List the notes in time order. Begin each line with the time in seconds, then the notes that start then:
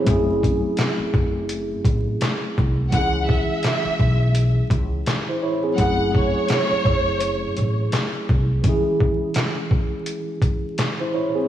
Already playing: C4
0.03 F#3 A3 C#4, closed hi-hat
0.07 F#1 E4 G#4, kick
0.43 kick, closed hi-hat
0.77 snare, clap, closed hi-hat
1.00 muted upright bass stroke
1.14 F#1, kick
1.49 closed hi-hat
1.85 A1, kick, closed hi-hat
2.21 snare, clap, closed hi-hat
2.58 C2, kick
2.90 C#2 E3 G#3 C#4 F#5, kick, closed hi-hat
2.96 E4 G#4
3.28 E5, kick
3.63 snare, clap, closed hi-hat
3.85 muted upright bass stroke
4.00 B1, kick
4.35 closed hi-hat
4.70 C#2, kick, closed hi-hat
5.06 snare, clap, closed hi-hat
5.29 E4 C5
5.42 E4 C#5
5.64 C4 G#4
5.74 F#3 A3 C#4 F#5, closed hi-hat
5.78 F#1 E4 G#4, kick
6.15 C#5, kick
6.48 snare, clap, closed hi-hat
6.71 muted upright bass stroke
6.85 F#1, kick
7.20 closed hi-hat
7.57 A1, closed hi-hat
7.92 snare, clap, closed hi-hat
8.29 C2, kick
8.61 E3 G#3 C#4, kick, closed hi-hat
8.67 E4 G#4
9.00 kick
9.34 snare, clap, closed hi-hat
9.71 kick
10.06 closed hi-hat
10.42 kick, closed hi-hat
10.78 snare, clap, closed hi-hat
11.00 E4 C5
11.14 E4 C#5
11.35 C4 G#4